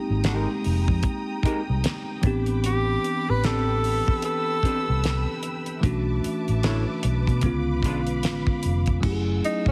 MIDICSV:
0, 0, Header, 1, 8, 480
1, 0, Start_track
1, 0, Tempo, 800000
1, 1580, Time_signature, 4, 2, 24, 8
1, 5831, End_track
2, 0, Start_track
2, 0, Title_t, "String section"
2, 0, Program_c, 0, 48
2, 0, Note_on_c, 0, 56, 61
2, 0, Note_on_c, 0, 79, 63
2, 0, Note_on_c, 0, 82, 62
2, 0, Note_on_c, 0, 87, 67
2, 1322, Note_off_c, 0, 56, 0
2, 1322, Note_off_c, 0, 87, 0
2, 1323, Note_off_c, 0, 82, 0
2, 1337, Note_on_c, 0, 83, 71
2, 1339, Note_on_c, 0, 86, 88
2, 1341, Note_on_c, 0, 71, 72
2, 2290, Note_off_c, 0, 86, 0
2, 2309, Note_on_c, 0, 88, 88
2, 3477, Note_off_c, 0, 79, 0
2, 3477, Note_off_c, 0, 83, 0
2, 3479, Note_off_c, 0, 71, 0
2, 3493, Note_off_c, 0, 88, 0
2, 3500, Note_on_c, 0, 76, 65
2, 3501, Note_on_c, 0, 86, 77
2, 3503, Note_on_c, 0, 71, 68
2, 3506, Note_on_c, 0, 81, 60
2, 4450, Note_off_c, 0, 76, 0
2, 4453, Note_off_c, 0, 81, 0
2, 4461, Note_on_c, 0, 83, 67
2, 4463, Note_on_c, 0, 77, 62
2, 5401, Note_off_c, 0, 86, 0
2, 5402, Note_off_c, 0, 71, 0
2, 5411, Note_off_c, 0, 83, 0
2, 5412, Note_off_c, 0, 77, 0
2, 5418, Note_on_c, 0, 80, 57
2, 5422, Note_on_c, 0, 88, 71
2, 5423, Note_on_c, 0, 78, 63
2, 5831, Note_off_c, 0, 78, 0
2, 5831, Note_off_c, 0, 80, 0
2, 5831, Note_off_c, 0, 88, 0
2, 5831, End_track
3, 0, Start_track
3, 0, Title_t, "Tenor saxophone"
3, 0, Program_c, 1, 66
3, 1593, Note_on_c, 1, 67, 87
3, 1978, Note_on_c, 1, 71, 102
3, 1987, Note_off_c, 1, 67, 0
3, 2069, Note_on_c, 1, 69, 96
3, 2078, Note_off_c, 1, 71, 0
3, 2545, Note_off_c, 1, 69, 0
3, 2551, Note_on_c, 1, 69, 98
3, 3242, Note_off_c, 1, 69, 0
3, 5668, Note_on_c, 1, 63, 96
3, 5798, Note_off_c, 1, 63, 0
3, 5809, Note_on_c, 1, 61, 96
3, 5831, Note_off_c, 1, 61, 0
3, 5831, End_track
4, 0, Start_track
4, 0, Title_t, "Hollow-body jazz guitar"
4, 0, Program_c, 2, 26
4, 145, Note_on_c, 2, 56, 65
4, 150, Note_on_c, 2, 63, 80
4, 152, Note_on_c, 2, 67, 72
4, 155, Note_on_c, 2, 70, 72
4, 286, Note_off_c, 2, 56, 0
4, 289, Note_off_c, 2, 63, 0
4, 290, Note_off_c, 2, 67, 0
4, 291, Note_off_c, 2, 70, 0
4, 870, Note_on_c, 2, 56, 64
4, 872, Note_on_c, 2, 63, 73
4, 875, Note_on_c, 2, 67, 72
4, 878, Note_on_c, 2, 70, 72
4, 958, Note_off_c, 2, 56, 0
4, 959, Note_off_c, 2, 63, 0
4, 961, Note_off_c, 2, 67, 0
4, 962, Note_off_c, 2, 70, 0
4, 2070, Note_on_c, 2, 60, 79
4, 2073, Note_on_c, 2, 62, 96
4, 2074, Note_on_c, 2, 67, 84
4, 2077, Note_on_c, 2, 71, 90
4, 2184, Note_off_c, 2, 60, 0
4, 2185, Note_off_c, 2, 62, 0
4, 2186, Note_off_c, 2, 67, 0
4, 2187, Note_off_c, 2, 71, 0
4, 2787, Note_on_c, 2, 60, 67
4, 2789, Note_on_c, 2, 62, 65
4, 2790, Note_on_c, 2, 67, 71
4, 2793, Note_on_c, 2, 71, 72
4, 2877, Note_off_c, 2, 60, 0
4, 2877, Note_off_c, 2, 62, 0
4, 2878, Note_off_c, 2, 67, 0
4, 2879, Note_off_c, 2, 71, 0
4, 3981, Note_on_c, 2, 62, 72
4, 3987, Note_on_c, 2, 64, 72
4, 3990, Note_on_c, 2, 69, 80
4, 3992, Note_on_c, 2, 73, 73
4, 4100, Note_off_c, 2, 62, 0
4, 4102, Note_off_c, 2, 64, 0
4, 4104, Note_off_c, 2, 69, 0
4, 4105, Note_off_c, 2, 73, 0
4, 4709, Note_on_c, 2, 56, 73
4, 4714, Note_on_c, 2, 62, 64
4, 4714, Note_on_c, 2, 65, 71
4, 4716, Note_on_c, 2, 71, 66
4, 4797, Note_off_c, 2, 56, 0
4, 4800, Note_off_c, 2, 62, 0
4, 4800, Note_off_c, 2, 65, 0
4, 4801, Note_off_c, 2, 71, 0
4, 5831, End_track
5, 0, Start_track
5, 0, Title_t, "Tine electric piano"
5, 0, Program_c, 3, 4
5, 0, Control_c, 3, 64, 127
5, 0, Note_on_c, 3, 56, 70
5, 0, Note_on_c, 3, 58, 57
5, 0, Note_on_c, 3, 60, 58
5, 0, Note_on_c, 3, 63, 63
5, 0, Note_on_c, 3, 67, 69
5, 1312, Note_off_c, 3, 56, 0
5, 1315, Note_off_c, 3, 58, 0
5, 1319, Note_off_c, 3, 60, 0
5, 1323, Note_off_c, 3, 63, 0
5, 1327, Note_off_c, 3, 67, 0
5, 1329, Note_on_c, 3, 52, 75
5, 1338, Note_on_c, 3, 59, 72
5, 1345, Note_on_c, 3, 60, 68
5, 1347, Control_c, 3, 64, 0
5, 1353, Note_on_c, 3, 62, 72
5, 1361, Note_on_c, 3, 67, 92
5, 1457, Control_c, 3, 64, 127
5, 3231, Note_off_c, 3, 52, 0
5, 3235, Note_off_c, 3, 59, 0
5, 3238, Note_off_c, 3, 60, 0
5, 3243, Note_off_c, 3, 62, 0
5, 3246, Note_off_c, 3, 67, 0
5, 3484, Note_on_c, 3, 52, 73
5, 3494, Note_on_c, 3, 57, 71
5, 3500, Note_on_c, 3, 61, 61
5, 3507, Control_c, 3, 64, 0
5, 3508, Note_on_c, 3, 62, 64
5, 3514, Note_on_c, 3, 66, 77
5, 3624, Control_c, 3, 64, 127
5, 4433, Note_off_c, 3, 52, 0
5, 4437, Note_off_c, 3, 57, 0
5, 4441, Note_off_c, 3, 61, 0
5, 4445, Note_off_c, 3, 62, 0
5, 4445, Note_on_c, 3, 50, 71
5, 4448, Note_off_c, 3, 66, 0
5, 4453, Note_on_c, 3, 56, 62
5, 4459, Note_on_c, 3, 59, 70
5, 4467, Note_on_c, 3, 61, 62
5, 4469, Control_c, 3, 64, 0
5, 4476, Note_on_c, 3, 65, 78
5, 4588, Control_c, 3, 64, 127
5, 5393, Note_off_c, 3, 50, 0
5, 5397, Note_off_c, 3, 56, 0
5, 5400, Note_off_c, 3, 59, 0
5, 5404, Note_on_c, 3, 54, 68
5, 5405, Note_off_c, 3, 61, 0
5, 5409, Note_off_c, 3, 65, 0
5, 5412, Note_on_c, 3, 57, 64
5, 5422, Note_on_c, 3, 61, 61
5, 5427, Control_c, 3, 64, 0
5, 5430, Note_on_c, 3, 64, 60
5, 5437, Note_on_c, 3, 67, 60
5, 5475, Note_off_c, 3, 67, 0
5, 5475, Note_on_c, 3, 68, 64
5, 5538, Control_c, 3, 64, 127
5, 5831, Note_off_c, 3, 54, 0
5, 5831, Note_off_c, 3, 57, 0
5, 5831, Note_off_c, 3, 61, 0
5, 5831, Note_off_c, 3, 64, 0
5, 5831, Note_off_c, 3, 68, 0
5, 5831, End_track
6, 0, Start_track
6, 0, Title_t, "Fingered electric bass"
6, 0, Program_c, 4, 33
6, 59, Note_on_c, 4, 32, 81
6, 268, Note_off_c, 4, 32, 0
6, 396, Note_on_c, 4, 29, 82
6, 518, Note_off_c, 4, 29, 0
6, 534, Note_on_c, 4, 41, 83
6, 616, Note_off_c, 4, 41, 0
6, 1017, Note_on_c, 4, 36, 75
6, 1097, Note_off_c, 4, 36, 0
6, 1346, Note_on_c, 4, 33, 99
6, 1774, Note_off_c, 4, 33, 0
6, 1978, Note_on_c, 4, 33, 72
6, 2402, Note_off_c, 4, 33, 0
6, 2937, Note_on_c, 4, 36, 101
6, 3146, Note_off_c, 4, 36, 0
6, 3505, Note_on_c, 4, 35, 96
6, 3718, Note_off_c, 4, 35, 0
6, 3892, Note_on_c, 4, 33, 78
6, 4104, Note_off_c, 4, 33, 0
6, 4225, Note_on_c, 4, 35, 92
6, 4352, Note_off_c, 4, 35, 0
6, 4370, Note_on_c, 4, 47, 82
6, 4465, Note_on_c, 4, 37, 87
6, 4474, Note_off_c, 4, 47, 0
6, 4701, Note_off_c, 4, 37, 0
6, 4701, Note_on_c, 4, 35, 91
6, 4950, Note_off_c, 4, 35, 0
6, 4950, Note_on_c, 4, 33, 83
6, 5074, Note_off_c, 4, 33, 0
6, 5191, Note_on_c, 4, 29, 100
6, 5401, Note_off_c, 4, 29, 0
6, 5424, Note_on_c, 4, 30, 89
6, 5637, Note_off_c, 4, 30, 0
6, 5801, Note_on_c, 4, 33, 76
6, 5831, Note_off_c, 4, 33, 0
6, 5831, End_track
7, 0, Start_track
7, 0, Title_t, "Muted fingered electric bass strokes"
7, 866, Note_on_c, 9, 29, 47
7, 926, Note_off_c, 9, 29, 0
7, 2785, Note_on_c, 9, 29, 47
7, 2845, Note_off_c, 9, 29, 0
7, 3751, Note_on_c, 9, 29, 50
7, 3811, Note_off_c, 9, 29, 0
7, 5831, End_track
8, 0, Start_track
8, 0, Title_t, "Drums"
8, 143, Note_on_c, 9, 42, 67
8, 148, Note_on_c, 9, 38, 103
8, 203, Note_off_c, 9, 42, 0
8, 208, Note_off_c, 9, 38, 0
8, 386, Note_on_c, 9, 46, 46
8, 446, Note_off_c, 9, 46, 0
8, 528, Note_on_c, 9, 36, 93
8, 588, Note_off_c, 9, 36, 0
8, 616, Note_on_c, 9, 42, 77
8, 621, Note_on_c, 9, 36, 99
8, 676, Note_off_c, 9, 42, 0
8, 681, Note_off_c, 9, 36, 0
8, 859, Note_on_c, 9, 36, 75
8, 873, Note_on_c, 9, 42, 70
8, 919, Note_off_c, 9, 36, 0
8, 933, Note_off_c, 9, 42, 0
8, 1104, Note_on_c, 9, 42, 88
8, 1113, Note_on_c, 9, 38, 88
8, 1164, Note_off_c, 9, 42, 0
8, 1173, Note_off_c, 9, 38, 0
8, 1337, Note_on_c, 9, 42, 58
8, 1340, Note_on_c, 9, 36, 95
8, 1397, Note_off_c, 9, 42, 0
8, 1400, Note_off_c, 9, 36, 0
8, 1478, Note_on_c, 9, 42, 34
8, 1538, Note_off_c, 9, 42, 0
8, 1583, Note_on_c, 9, 42, 86
8, 1643, Note_off_c, 9, 42, 0
8, 1826, Note_on_c, 9, 42, 55
8, 1886, Note_off_c, 9, 42, 0
8, 2062, Note_on_c, 9, 42, 59
8, 2067, Note_on_c, 9, 38, 109
8, 2122, Note_off_c, 9, 42, 0
8, 2127, Note_off_c, 9, 38, 0
8, 2304, Note_on_c, 9, 46, 53
8, 2364, Note_off_c, 9, 46, 0
8, 2448, Note_on_c, 9, 36, 95
8, 2508, Note_off_c, 9, 36, 0
8, 2534, Note_on_c, 9, 42, 86
8, 2594, Note_off_c, 9, 42, 0
8, 2778, Note_on_c, 9, 36, 69
8, 2791, Note_on_c, 9, 42, 71
8, 2838, Note_off_c, 9, 36, 0
8, 2851, Note_off_c, 9, 42, 0
8, 3022, Note_on_c, 9, 42, 80
8, 3032, Note_on_c, 9, 38, 88
8, 3082, Note_off_c, 9, 42, 0
8, 3092, Note_off_c, 9, 38, 0
8, 3256, Note_on_c, 9, 42, 61
8, 3316, Note_off_c, 9, 42, 0
8, 3397, Note_on_c, 9, 42, 34
8, 3457, Note_off_c, 9, 42, 0
8, 3499, Note_on_c, 9, 36, 96
8, 3501, Note_on_c, 9, 42, 81
8, 3559, Note_off_c, 9, 36, 0
8, 3561, Note_off_c, 9, 42, 0
8, 3746, Note_on_c, 9, 42, 64
8, 3806, Note_off_c, 9, 42, 0
8, 3887, Note_on_c, 9, 42, 29
8, 3947, Note_off_c, 9, 42, 0
8, 3980, Note_on_c, 9, 42, 67
8, 3985, Note_on_c, 9, 38, 110
8, 4040, Note_off_c, 9, 42, 0
8, 4045, Note_off_c, 9, 38, 0
8, 4218, Note_on_c, 9, 42, 83
8, 4278, Note_off_c, 9, 42, 0
8, 4364, Note_on_c, 9, 36, 82
8, 4372, Note_on_c, 9, 42, 31
8, 4424, Note_off_c, 9, 36, 0
8, 4432, Note_off_c, 9, 42, 0
8, 4449, Note_on_c, 9, 42, 69
8, 4457, Note_on_c, 9, 36, 86
8, 4509, Note_off_c, 9, 42, 0
8, 4517, Note_off_c, 9, 36, 0
8, 4695, Note_on_c, 9, 36, 82
8, 4706, Note_on_c, 9, 42, 68
8, 4755, Note_off_c, 9, 36, 0
8, 4766, Note_off_c, 9, 42, 0
8, 4840, Note_on_c, 9, 42, 36
8, 4900, Note_off_c, 9, 42, 0
8, 4939, Note_on_c, 9, 42, 86
8, 4949, Note_on_c, 9, 38, 93
8, 4999, Note_off_c, 9, 42, 0
8, 5009, Note_off_c, 9, 38, 0
8, 5080, Note_on_c, 9, 36, 94
8, 5140, Note_off_c, 9, 36, 0
8, 5177, Note_on_c, 9, 42, 61
8, 5237, Note_off_c, 9, 42, 0
8, 5316, Note_on_c, 9, 42, 36
8, 5325, Note_on_c, 9, 36, 83
8, 5376, Note_off_c, 9, 42, 0
8, 5385, Note_off_c, 9, 36, 0
8, 5418, Note_on_c, 9, 49, 76
8, 5419, Note_on_c, 9, 36, 100
8, 5478, Note_off_c, 9, 49, 0
8, 5479, Note_off_c, 9, 36, 0
8, 5667, Note_on_c, 9, 42, 60
8, 5727, Note_off_c, 9, 42, 0
8, 5796, Note_on_c, 9, 36, 81
8, 5831, Note_off_c, 9, 36, 0
8, 5831, End_track
0, 0, End_of_file